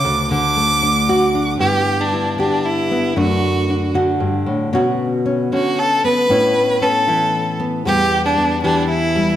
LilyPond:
<<
  \new Staff \with { instrumentName = "Violin" } { \time 3/4 \key d \major \tempo 4 = 116 d'''8 d'''2~ d'''8 | g'8. d'8. d'8 e'4 | fis'4. r4. | r4. fis'8 a'8 b'8~ |
b'4 a'4. r8 | g'8. d'8. d'8 e'4 | }
  \new Staff \with { instrumentName = "Nylon-string guitar" } { \time 3/4 \key d \major << { r4 a8 d'8 fis'8 d'8 | <b e'>4 e'8 g'4 b8 | <a d'>4 d'8 fis'4. | <b cis' fis'>4 cis'8 cis'4 b8 |
<b cis' e'>4 cis'8 e'4 b8 | <g b>4 b8 g'4 g8 | } \\ { d,8 d2~ d8 | g,4. d4. | fis,4. d8 g,8 a,8 | b,4. d4. |
a,4. e4. | e,4. e4. | } >> }
>>